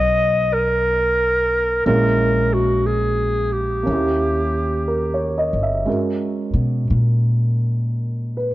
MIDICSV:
0, 0, Header, 1, 4, 480
1, 0, Start_track
1, 0, Key_signature, 5, "minor"
1, 0, Tempo, 996678
1, 899, Time_signature, 4, 2, 24, 8
1, 4115, End_track
2, 0, Start_track
2, 0, Title_t, "Clarinet"
2, 0, Program_c, 0, 71
2, 0, Note_on_c, 0, 75, 86
2, 258, Note_on_c, 0, 70, 78
2, 266, Note_off_c, 0, 75, 0
2, 896, Note_off_c, 0, 70, 0
2, 899, Note_on_c, 0, 70, 69
2, 1221, Note_on_c, 0, 66, 57
2, 1228, Note_off_c, 0, 70, 0
2, 1378, Note_on_c, 0, 68, 67
2, 1385, Note_off_c, 0, 66, 0
2, 1698, Note_on_c, 0, 67, 62
2, 1705, Note_off_c, 0, 68, 0
2, 2661, Note_off_c, 0, 67, 0
2, 4115, End_track
3, 0, Start_track
3, 0, Title_t, "Grand piano"
3, 0, Program_c, 1, 0
3, 0, Control_c, 1, 64, 127
3, 0, Note_on_c, 1, 59, 40
3, 0, Note_on_c, 1, 61, 37
3, 0, Note_on_c, 1, 66, 38
3, 0, Note_on_c, 1, 68, 44
3, 893, Note_off_c, 1, 61, 0
3, 896, Note_on_c, 1, 58, 40
3, 900, Note_on_c, 1, 61, 37
3, 902, Note_on_c, 1, 56, 47
3, 902, Note_on_c, 1, 64, 37
3, 903, Note_off_c, 1, 59, 0
3, 904, Note_off_c, 1, 66, 0
3, 905, Control_c, 1, 64, 0
3, 906, Note_off_c, 1, 68, 0
3, 984, Control_c, 1, 64, 127
3, 1837, Note_off_c, 1, 58, 0
3, 1844, Note_on_c, 1, 58, 38
3, 1850, Note_off_c, 1, 61, 0
3, 1857, Note_on_c, 1, 61, 36
3, 1861, Note_off_c, 1, 56, 0
3, 1861, Note_off_c, 1, 64, 0
3, 1865, Control_c, 1, 64, 0
3, 1879, Note_on_c, 1, 64, 37
3, 1890, Note_on_c, 1, 67, 41
3, 1949, Control_c, 1, 64, 127
3, 2349, Note_on_c, 1, 70, 34
3, 2475, Note_on_c, 1, 73, 30
3, 2567, Note_off_c, 1, 70, 0
3, 2590, Note_on_c, 1, 75, 34
3, 2673, Note_off_c, 1, 73, 0
3, 2710, Note_on_c, 1, 76, 37
3, 2738, Note_off_c, 1, 75, 0
3, 2817, Note_on_c, 1, 56, 28
3, 2818, Note_off_c, 1, 58, 0
3, 2818, Note_off_c, 1, 61, 0
3, 2825, Note_on_c, 1, 61, 27
3, 2830, Note_on_c, 1, 66, 26
3, 2833, Control_c, 1, 64, 0
3, 2836, Note_off_c, 1, 64, 0
3, 2838, Note_on_c, 1, 70, 30
3, 2842, Note_off_c, 1, 67, 0
3, 2876, Note_off_c, 1, 76, 0
3, 2928, Control_c, 1, 64, 127
3, 4030, Note_on_c, 1, 71, 33
3, 4115, Note_off_c, 1, 56, 0
3, 4115, Note_off_c, 1, 61, 0
3, 4115, Note_off_c, 1, 66, 0
3, 4115, Note_off_c, 1, 70, 0
3, 4115, Note_off_c, 1, 71, 0
3, 4115, End_track
4, 0, Start_track
4, 0, Title_t, "Upright bass"
4, 0, Program_c, 2, 32
4, 0, Note_on_c, 2, 35, 61
4, 880, Note_off_c, 2, 35, 0
4, 897, Note_on_c, 2, 34, 61
4, 1839, Note_off_c, 2, 34, 0
4, 1863, Note_on_c, 2, 39, 57
4, 2642, Note_off_c, 2, 39, 0
4, 2663, Note_on_c, 2, 31, 43
4, 2816, Note_off_c, 2, 31, 0
4, 3148, Note_on_c, 2, 47, 47
4, 3305, Note_off_c, 2, 47, 0
4, 3324, Note_on_c, 2, 46, 45
4, 4091, Note_off_c, 2, 46, 0
4, 4115, End_track
0, 0, End_of_file